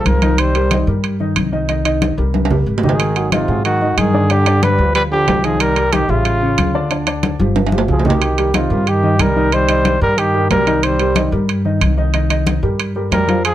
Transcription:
Already playing: upright piano G#3 G#4 C5
0.05 upright bass C2, trombone F3, trumpet A#4, high conga, high timbale
0.22 upright piano D#3 D#4 D#5, high conga, high timbale
0.38 trombone G3, trumpet C5, high conga, high timbale
0.55 upright piano G3 G4 A#4, high conga, high timbale
0.71 upright piano D#3 D#4 D#5, high conga, high timbale
0.87 upright bass G2, upright piano G3 G4 A#4, high conga
1.04 high conga, high timbale
1.20 upright piano D#3 D#4 D#5, high conga
1.36 upright bass C2, high conga, high timbale
1.52 upright piano D#3 D#4 D#5, high conga
1.68 upright piano D#3 D#4 D#5, high conga, high timbale
1.85 upright piano D#3 D#4 D#5, high conga, high timbale
2.02 high conga, high timbale
2.17 upright bass C2, upright piano G3 G4 A#4
2.34 high conga, high timbale
2.45 high timbale
2.50 upright piano G3 G4 A#4, low conga
2.66 upright bass G#1
2.78 low timbale
2.83 trombone D#3, upright piano D#3 D#4 D#5, trumpet G#4, low conga
2.89 low timbale
3.00 high conga, high timbale
3.16 upright piano F#3 F#4 G#4, high conga, high timbale
3.31 trombone C3, upright piano D#3 D#4 D#5, trumpet F4, high conga, high timbale
3.48 upright bass G#2, upright piano F#3 F#4 G#4, high conga
3.64 trombone D#3, trumpet F#4, high conga, high timbale
3.81 upright piano D#3 D#4 D#5, high conga
3.97 upright bass G2, trombone D#3, trumpet G#4, high conga, high timbale
4.14 upright piano D3 D4 D5, high conga
4.29 trombone D3, upright piano D3 D4 D5, trumpet G4, high conga, high timbale
4.46 upright piano D3 D4 D5, high conga, high timbale
4.62 trombone G3, trumpet B4, high conga, high timbale
4.78 upright bass D2, upright piano F3 F4 G4
4.95 trombone G3, trumpet B4, high conga, high timbale
5.11 trombone D3, upright piano F3 F4 G4, trumpet G4, high conga
5.28 upright bass C2, high conga, high timbale, low timbale
5.44 upright piano D#3 D#4 D#5, trombone F3, trumpet G#4, high timbale
5.60 trombone G3, trumpet A#4, high conga, high timbale
5.76 upright piano G3 G4 A#4, high conga, high timbale
5.93 trombone D#3, upright piano D#3 D#4 D#5, trumpet G4, high conga, high timbale
6.09 upright bass A1, trombone C#3, upright piano G3 G4 E5, trumpet F4, high conga
6.25 high conga, high timbale
6.42 upright piano C#3 C#4 C#5, high conga
6.58 upright bass D2, high conga, high timbale
6.74 upright piano D3 D4 D5, high conga
6.91 upright piano D3 D4 D5, high conga, high timbale
7.07 upright piano D3 D4 D5, high conga, high timbale
7.23 high conga, high timbale
7.39 upright bass G1, upright piano F3 F4 G4, high conga
7.56 high conga, high timbale
7.67 high timbale
7.72 upright piano F3 F4 G4, high conga
7.78 low timbale
7.88 upright bass C2, trombone F3, trumpet G#4, low conga
7.99 low timbale
8.05 upright piano D#3 D#4 D#5, trombone D#3, trumpet G4, low conga
8.10 low timbale
8.21 high conga, high timbale
8.38 upright piano G3 G4 A#4, high conga, high timbale
8.54 trombone C3, upright piano D#3 D#4 D#5, trumpet F4, high conga, high timbale
8.70 upright bass G2, upright piano G3 G4 A#4, high conga
8.87 trombone D#3, trumpet G4, high conga, high timbale
9.03 upright piano D#3 D#4 D#5, high conga
9.19 upright bass C2, trombone G3, trumpet A#4, high conga, high timbale
9.36 upright piano D#3 D#4 D#5, high conga
9.52 upright piano D#3 D#4 D#5, trombone G3, trumpet C5, high conga, high timbale
9.69 upright piano D#3 D#4 D#5, high conga, high timbale
9.85 high conga, high timbale
10.01 upright bass G2, upright piano G3 G4 A#4, trombone G3, trumpet A#4
10.17 trombone D#3, trumpet G4, high conga, high timbale
10.34 upright piano G3 G4 A#4, high conga
10.50 upright bass C2, trombone G3, trumpet A#4, high conga, high timbale, low timbale
10.67 upright piano D#3 D#4 D#5, high timbale
10.83 trombone G3, trumpet C5, high conga, high timbale
10.99 upright piano G3 G4 A#4, high conga, high timbale
11.16 upright piano D#3 D#4 D#5, high conga, high timbale
11.32 upright bass G2, upright piano G3 G4 A#4, high conga
11.48 high conga, high timbale
11.65 upright piano D#3 D#4 D#5, high conga
11.81 upright bass C2, high conga, high timbale
11.97 upright piano D#3 D#4 D#5, high conga
12.14 upright piano D#3 D#4 D#5, high conga, high timbale
12.30 upright piano D#3 D#4 D#5, high conga, high timbale
12.47 high conga, high timbale
12.63 upright bass G2, upright piano G3 G4 A#4
12.79 high conga, high timbale
12.96 upright piano G3 G4 A#4, high conga
13.11 upright bass F2, trombone G3, trumpet A#4, high conga, high timbale, low timbale
13.28 upright piano F3 F4 F5, high conga, high timbale
13.44 trombone F3, trumpet G#4, high conga, high timbale

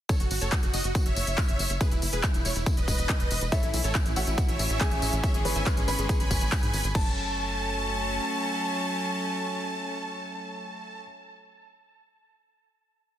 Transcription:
0.09 supersaw synth A4 C#5, kick, closed hi-hat, tambourine
0.20 analog synth bass F#1, supersaw synth F#4, closed hi-hat, tambourine
0.31 analog synth bass G#1, supersaw synth F#4, open hi-hat, tambourine
0.41 analog synth bass F#1, supersaw synth A4 C#5, closed hi-hat, tambourine
0.52 supersaw synth F#4, kick, clap, closed hi-hat, tambourine
0.63 analog synth bass F#1, supersaw synth F#4, closed hi-hat, tambourine
0.73 analog synth bass F#1, supersaw synth F#4 D#5, open hi-hat, tambourine
0.84 analog synth bass F#1, supersaw synth F#4, closed hi-hat, tambourine
0.95 supersaw synth F#4, kick, closed hi-hat, tambourine
1.06 analog synth bass F#1, supersaw synth C#5 E5, closed hi-hat, tambourine
1.16 analog synth bass F#1, open hi-hat, tambourine
1.27 analog synth bass F#1, closed hi-hat, tambourine
1.38 kick, clap, closed hi-hat, tambourine
1.48 analog synth bass F#1, closed hi-hat, tambourine
1.59 analog synth bass F#1, open hi-hat, tambourine
1.70 analog synth bass F#1, closed hi-hat, tambourine
1.81 supersaw synth G#4 B4, kick, closed hi-hat, tambourine
1.91 analog synth bass E1, supersaw synth E4, closed hi-hat, tambourine
2.02 analog synth bass F#1, supersaw synth E4, open hi-hat, tambourine
2.13 analog synth bass E1, supersaw synth G#4 B4, closed hi-hat, tambourine
2.23 supersaw synth E4, kick, clap, closed hi-hat, tambourine
2.34 analog synth bass E1, supersaw synth E4, closed hi-hat, tambourine
2.45 analog synth bass E1, supersaw synth E4 C#5, open hi-hat, tambourine
2.56 analog synth bass E1, supersaw synth E4, closed hi-hat, tambourine
2.66 supersaw synth E4, kick, closed hi-hat, tambourine
2.77 analog synth bass E1, supersaw synth B4 D#5, closed hi-hat, tambourine
2.88 analog synth bass E1, kick, open hi-hat, tambourine
2.99 analog synth bass E1, closed hi-hat, tambourine
3.09 kick, clap, closed hi-hat, tambourine
3.20 analog synth bass E1, closed hi-hat, tambourine
3.31 analog synth bass E1, open hi-hat, tambourine
3.41 analog synth bass E1, closed hi-hat, tambourine
3.52 string section E3 A3 C#4, grand piano E4 E5, supersaw synth A4 C#5, kick, closed hi-hat, tambourine
3.62 analog synth bass A1, supersaw synth E4, closed hi-hat, tambourine
3.73 analog synth bass B1, supersaw synth E4, open hi-hat, tambourine
3.84 analog synth bass A1, supersaw synth A4 C#5, closed hi-hat, tambourine
3.95 supersaw synth E4, kick, clap, closed hi-hat, tambourine
4.05 analog synth bass A1, supersaw synth E4, closed hi-hat, tambourine
4.16 analog synth bass A1, grand piano F#4 F#5, supersaw synth C#5 E5, open hi-hat, tambourine
4.27 analog synth bass A1, supersaw synth E4, closed hi-hat, tambourine
4.38 kick, closed hi-hat, tambourine
4.48 analog synth bass A1, supersaw synth C#5 E5, closed hi-hat, tambourine
4.59 analog synth bass A1, open hi-hat, tambourine
4.70 analog synth bass A1, closed hi-hat, tambourine
4.81 grand piano G#4 G#5, kick, clap, closed hi-hat, tambourine
4.91 analog synth bass A1, closed hi-hat, tambourine
5.02 analog synth bass A1, open hi-hat, tambourine
5.13 analog synth bass A1, closed hi-hat, tambourine
5.23 string section G#3, supersaw synth C#5 E5, kick, closed hi-hat, tambourine
5.34 analog synth bass G#1, supersaw synth G#4, closed hi-hat, tambourine
5.45 analog synth bass G#1, supersaw synth G#4, grand piano B4 B5, open hi-hat, tambourine
5.56 analog synth bass G#1, supersaw synth E5 G#5, closed hi-hat, tambourine
5.66 supersaw synth G#4, kick, clap, closed hi-hat, tambourine
5.77 analog synth bass G#1, supersaw synth G#4, closed hi-hat, tambourine
5.88 analog synth bass G#1, grand piano B4 B5, supersaw synth G#5 B5, open hi-hat, tambourine
5.99 analog synth bass G#1, supersaw synth G#4, closed hi-hat, tambourine
6.09 supersaw synth G#4, kick, closed hi-hat, tambourine
6.20 analog synth bass G#1, supersaw synth G#5 B5, closed hi-hat, tambourine
6.31 analog synth bass G#1, kick, open hi-hat, tambourine
6.41 analog synth bass G#1, closed hi-hat, tambourine
6.52 kick, clap, closed hi-hat, tambourine
6.63 analog synth bass G#2, closed hi-hat, tambourine
6.73 analog synth bass G#1, open hi-hat, tambourine
6.84 analog synth bass G#1, closed hi-hat, tambourine
6.95 string section F#3 A3 C#4, grand piano A5, supersaw synth A5, kick, crash

